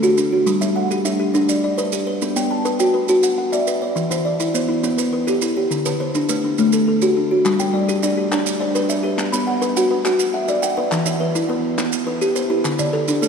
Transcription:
0.00 0.32 F#4 medium
0.00 0.31 F#4 medium
0.00 0.47 G4 medium
0.00 0.32 A4 medium
0.00 maracas soft
0.17 0.62 D4 medium
0.17 maracas medium
0.32 0.62 F#4 medium
0.46 0.76 G3 medium
0.46 maracas soft
0.61 0.91 G3 medium
0.61 1.04 E5 medium
0.61 maracas medium
0.76 1.20 F#5 medium
0.91 1.18 G4 medium
0.91 maracas medium
1.05 1.33 D4 medium
1.05 1.49 E5 medium
1.05 maracas medium
1.20 1.64 G4 medium
1.34 1.63 D4 medium
1.34 1.64 D4 medium
1.34 maracas medium
1.49 1.63 D5 medium
1.49 maracas medium
1.64 2.08 D5 medium
1.77 2.06 B4 medium
1.77 2.07 B4 medium
1.77 2.22 C5 medium
1.77 maracas medium
1.92 2.37 G4 medium
1.92 maracas medium
2.07 2.36 B4 medium
2.22 2.51 B3 medium
2.22 maracas medium
2.36 2.66 B3 medium
2.36 2.78 G5 medium
2.36 maracas medium
2.51 2.95 A5 medium
2.65 2.93 B4 medium
2.65 maracas medium
2.80 3.08 F#4 medium
2.80 3.24 G5 medium
2.80 maracas medium
2.94 3.38 B4 medium
3.09 3.38 F#4 medium
3.09 maracas medium
3.23 3.37 F#5 medium
3.23 maracas medium
3.38 3.82 F#5 medium
3.52 3.82 D5 medium
3.52 3.81 D5 medium
3.52 3.97 E5 medium
3.52 maracas medium
3.67 4.11 B4 medium
3.67 maracas medium
3.82 4.11 D5 medium
3.96 4.25 E3 medium
3.96 maracas medium
4.11 4.40 E3 medium
4.11 4.53 C5 medium
4.11 maracas medium
4.25 4.69 D5 medium
4.40 4.67 E4 medium
4.40 maracas medium
4.54 4.82 B3 medium
4.54 4.98 C5 medium
4.54 maracas medium
4.69 5.13 E4 medium
4.83 5.13 B3 medium
4.83 maracas medium
4.98 5.11 B4 medium
4.98 maracas medium
5.13 5.56 B4 medium
5.27 5.56 G4 medium
5.27 5.71 A4 medium
5.27 maracas medium
5.42 5.86 E4 medium
5.42 maracas medium
5.57 5.86 G4 medium
5.71 6.00 D3 medium
5.71 maracas medium
5.86 6.15 D3 medium
5.86 6.28 B4 medium
5.86 maracas medium
6.00 6.44 C5 medium
6.15 6.43 D4 medium
6.15 maracas medium
6.29 6.58 A3 medium
6.29 6.73 B4 medium
6.29 maracas medium
6.44 6.87 D4 medium
6.58 6.87 A3 medium
6.58 maracas medium
6.72 6.87 A4 medium
6.72 maracas medium
6.88 7.31 A4 medium
7.02 7.30 F#4 medium
7.02 7.31 F#4 medium
7.02 7.45 G4 medium
7.02 maracas medium
7.17 7.60 D4 medium
7.31 7.60 F#4 medium
7.45 7.74 G3 medium
7.45 clap medium
7.45 maracas medium
7.59 7.88 G3 medium
7.59 8.03 G5 medium
7.59 maracas medium
7.74 8.02 D5 medium
7.74 8.17 D5 medium
7.88 8.16 G4 medium
7.88 maracas medium
8.03 8.31 D4 medium
8.03 8.46 D5 medium
8.03 maracas medium
8.17 8.61 G4 medium
8.31 8.60 D4 medium
8.31 8.61 D4 medium
8.31 clap medium
8.31 maracas medium
8.46 maracas medium
8.60 9.04 C5 medium
8.60 9.04 D5 medium
8.75 9.04 B4 medium
8.75 9.03 B4 medium
8.75 maracas medium
8.89 9.33 D5 medium
8.89 9.33 E5 medium
8.89 maracas medium
9.03 9.33 G4 medium
9.03 9.33 B4 medium
9.18 9.47 B3 medium
9.18 clap medium
9.18 maracas medium
9.32 9.62 B3 medium
9.32 9.76 B5 medium
9.32 maracas medium
9.47 9.75 F#5 medium
9.47 9.91 F#5 medium
9.62 9.90 B4 medium
9.62 maracas medium
9.77 10.04 F#4 medium
9.77 10.20 F#5 medium
9.77 maracas medium
9.91 10.34 B4 medium
10.05 10.34 F#4 medium
10.05 clap medium
10.05 maracas medium
10.19 maracas medium
10.34 10.77 E5 medium
10.34 10.77 F#5 medium
10.48 10.76 D5 medium
10.48 10.77 D5 medium
10.48 maracas medium
10.62 11.06 F#5 medium
10.62 11.06 G5 medium
10.62 maracas medium
10.77 11.06 B4 medium
10.77 11.06 D5 medium
10.92 11.21 E3 medium
10.92 clap medium
10.92 maracas medium
11.06 11.35 E3 medium
11.06 11.50 E5 medium
11.06 maracas medium
11.20 11.64 B4 medium
11.20 11.48 B4 medium
11.35 11.64 E4 medium
11.35 maracas medium
11.49 11.77 B3 medium
11.49 11.93 B4 medium
11.78 12.07 B3 medium
11.78 clap medium
11.78 maracas medium
11.92 maracas medium
12.07 12.50 A4 medium
12.07 12.50 B4 medium
12.21 12.50 G4 medium
12.21 12.49 G4 medium
12.21 maracas medium
12.35 12.79 B4 medium
12.35 12.79 C5 medium
12.35 maracas medium
12.50 12.79 E4 medium
12.50 12.79 G4 medium
12.65 12.94 D3 medium
12.65 clap medium
12.65 maracas medium
12.79 13.08 D3 medium
12.79 13.23 D5 medium
12.79 maracas medium
12.93 13.21 A4 medium
12.93 13.28 A4 medium
12.93 clap soft
13.08 13.28 D4 medium
13.08 maracas medium
13.22 13.28 A3 medium
13.22 13.28 A4 medium
13.22 maracas medium

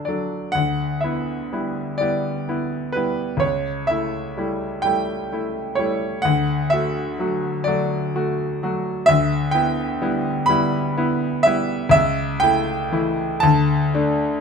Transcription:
0.00 0.08 F#3 soft
0.00 0.08 D4 soft
0.00 0.08 A4 soft
0.00 0.52 F#5 medium
0.00 0.58 A5 medium
0.05 0.52 F#3 soft
0.05 0.52 D4 soft
0.05 0.52 A4 soft
0.05 0.54 D5 soft
0.52 1.02 D2 soft
0.52 1.02 F#5 medium
1.01 1.48 B3 soft
1.01 1.48 E4 soft
1.01 1.99 E5 soft
1.53 1.97 G3 soft
1.53 1.97 B3 soft
1.53 1.97 E4 soft
1.98 2.45 G3 soft
1.98 2.45 B3 soft
1.98 2.45 E4 soft
1.98 2.95 D5 medium
2.49 2.92 B3 soft
2.49 2.92 E4 soft
2.92 3.39 G3 soft
2.92 3.39 E4 soft
2.92 3.42 B4 medium
2.97 3.40 B3 soft
3.37 3.86 C#2 soft
3.37 3.89 C#5 medium
3.87 4.34 A3 soft
3.87 4.34 E4 soft
3.87 4.83 E5 medium
4.37 4.81 G3 soft
4.37 4.81 A3 soft
4.37 4.81 E4 soft
4.82 5.28 G3 soft
4.82 5.28 A3 soft
4.82 5.29 E4 soft
4.82 5.77 G5 medium
5.32 5.75 A3 soft
5.32 5.75 E4 soft
5.75 6.21 G3 soft
5.75 6.22 A3 soft
5.75 6.24 C#5 medium
5.79 6.22 E4 soft
6.22 6.71 D2 medium
6.22 6.71 F#5 medium
6.70 7.15 A3 soft
6.70 7.16 F#4 soft
6.70 7.66 E5 medium
7.19 7.63 F#3 soft
7.19 7.63 A3 soft
7.19 7.63 F#4 soft
7.64 8.11 F#3 soft
7.64 8.11 A3 soft
7.64 8.12 F#4 soft
7.64 8.61 D5 medium
8.16 8.59 A3 soft
8.16 8.59 F#4 soft
8.63 9.05 F#3 soft
8.63 9.05 A3 soft
8.63 9.05 F#4 soft
9.06 9.53 D2 medium
9.06 9.53 E5 loud
9.51 9.97 B3 soft
9.51 9.98 E4 soft
9.51 10.48 G5 medium
10.02 10.45 G3 soft
10.02 10.45 B3 soft
10.02 10.46 E4 soft
10.46 10.93 G3 soft
10.46 10.94 B3 soft
10.46 10.94 E4 medium
10.46 11.44 B5 loud
10.97 11.42 B3 soft
10.97 11.42 E4 medium
11.43 11.91 G3 soft
11.43 11.91 B3 soft
11.43 11.90 E5 medium
11.47 11.91 E4 soft
11.89 12.40 C#2 medium
11.89 12.42 E5 loud
12.40 12.88 A3 soft
12.40 12.89 E4 medium
12.40 13.42 G5 loud
12.92 13.39 E3 soft
12.92 13.39 A3 soft
12.92 13.40 E4 soft
13.40 13.94 D2 medium
13.40 14.40 A5 medium
13.94 14.40 A3 medium
13.94 14.40 D4 medium

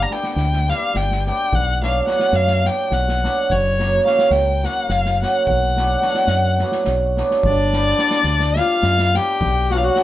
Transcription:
0.02 0.14 A#5 medium
0.11 0.66 G3 medium
0.11 0.31 B3 medium
0.11 0.31 D4 medium
0.11 0.31 G4 medium
0.11 0.35 G5 medium
0.11 snare soft
0.23 snare soft
0.36 0.71 D2 medium
0.36 0.71 G5 medium
0.36 snare soft
0.53 snare soft
0.67 1.25 G3 medium
0.67 0.89 B3 medium
0.67 0.89 D4 soft
0.67 0.90 G4 medium
0.67 0.98 F5 medium
0.67 snare soft
0.94 1.30 G1 medium
0.94 1.27 G5 medium
0.94 snare soft
1.11 snare soft
1.26 1.58 G3 medium
1.26 1.48 B3 medium
1.26 1.48 D4 medium
1.26 1.48 G4 medium
1.26 1.56 G5 loud
1.26 snare soft
1.52 2.01 B1 medium
1.52 1.83 F#5 loud
1.52 kick medium
1.82 2.06 F#3 medium
1.82 2.02 B3 medium
1.82 2.03 D4 medium
1.82 2.03 F#4 medium
1.82 2.07 F5 medium
1.82 snare soft
2.07 2.64 F#3 medium
2.07 2.27 B3 medium
2.07 2.28 D4 medium
2.07 2.29 F#4 medium
2.07 2.37 F#5 medium
2.07 snare soft
2.19 snare soft
2.32 2.68 F#2 loud
2.32 2.68 F5 medium
2.32 snare soft
2.47 snare soft
2.65 3.22 F#3 soft
2.65 2.87 B3 soft
2.65 2.87 D4 soft
2.65 2.87 F#4 medium
2.65 2.94 G5 medium
2.65 snare soft
2.91 3.27 B1 medium
2.91 3.53 F#5 medium
2.91 snare soft
3.08 snare soft
3.23 3.55 F#3 medium
3.23 3.45 B3 medium
3.23 3.45 D4 medium
3.23 3.45 F#4 medium
3.23 snare soft
3.50 3.98 F#1 loud
3.50 4.06 C#5 medium
3.50 kick medium
3.79 4.03 F#3 medium
3.79 4.00 A#3 medium
3.79 4.00 C#4 medium
3.79 4.01 F#4 medium
3.79 snare soft
4.05 4.62 F#3 medium
4.05 4.25 A#3 medium
4.05 4.25 C#4 medium
4.05 4.26 F#4 medium
4.05 4.32 F5 medium
4.05 snare soft
4.19 snare soft
4.30 4.65 C#2 medium
4.30 4.66 G5 medium
4.30 snare soft
4.63 5.20 F#3 medium
4.63 4.84 A#3 soft
4.63 4.84 C#4 medium
4.63 4.85 F#4 medium
4.63 4.93 F#5 medium
4.63 snare soft
4.89 5.24 F#1 medium
4.89 5.22 F5 medium
4.89 snare soft
5.05 snare soft
5.22 5.52 F#3 medium
5.22 5.42 A#3 medium
5.22 5.43 C#4 medium
5.22 5.43 F#4 medium
5.22 5.46 F#5 medium
5.22 snare soft
5.47 5.95 B1 medium
5.47 7.15 F#5 loud
5.47 kick medium
5.77 6.01 F#3 medium
5.77 5.97 B3 medium
5.77 5.98 D4 medium
5.77 5.98 F#4 medium
5.77 snare soft
6.02 6.61 F#3 medium
6.02 6.22 B3 medium
6.02 6.22 D4 medium
6.02 6.22 F#4 medium
6.02 snare soft
6.14 snare soft
6.27 6.62 F#2 medium
6.27 snare soft
6.59 7.17 F#3 medium
6.59 6.81 B3 medium
6.59 snare soft
6.63 6.82 D4 medium
6.63 6.82 F#4 medium
6.72 snare soft
6.84 7.22 B1 medium
6.84 snare soft
7.17 7.49 F#3 medium
7.17 7.39 B3 medium
7.17 7.39 D4 medium
7.17 7.39 F#4 medium
7.17 snare soft
7.31 snare soft
7.43 7.92 G1 loud
7.43 8.53 D4 medium
7.43 8.59 D5 loud
7.43 kick medium
7.73 7.96 G3 medium
7.73 7.93 B3 medium
7.73 7.94 D4 medium
7.73 7.94 G4 medium
7.73 snare soft
7.98 8.55 G3 medium
7.98 8.18 B3 medium
7.98 8.19 D4 medium
7.98 8.19 G4 medium
7.98 snare soft
8.11 snare soft
8.23 8.59 D2 medium
8.23 snare soft
8.40 snare soft
8.56 9.13 G3 medium
8.56 8.77 B3 soft
8.56 8.77 D4 soft
8.56 9.16 F4 loud
8.56 8.77 G4 medium
8.56 9.17 F5 loud
8.56 snare soft
8.82 9.18 F#2 medium
8.82 snare soft
8.98 snare soft
9.15 9.46 G3 medium
9.15 9.36 B3 medium
9.15 9.36 D4 medium
9.15 9.36 G4 medium
9.15 9.71 G4 medium
9.15 9.73 G5 loud
9.15 snare soft
9.41 9.89 B1 loud
9.41 kick medium
9.70 9.96 F#3 medium
9.70 9.91 B3 medium
9.70 9.91 D4 medium
9.70 9.76 F#4 loud
9.70 9.92 F#4 medium
9.70 9.79 F#5 medium
9.70 snare soft
9.75 9.82 F4 medium
9.75 9.85 F5 medium
9.84 10.03 F#4 medium
9.84 10.03 F#5 medium
9.96 10.03 F#3 medium
9.96 10.03 B3 medium
9.96 10.03 D4 medium
9.96 10.03 F#4 medium
9.96 snare soft

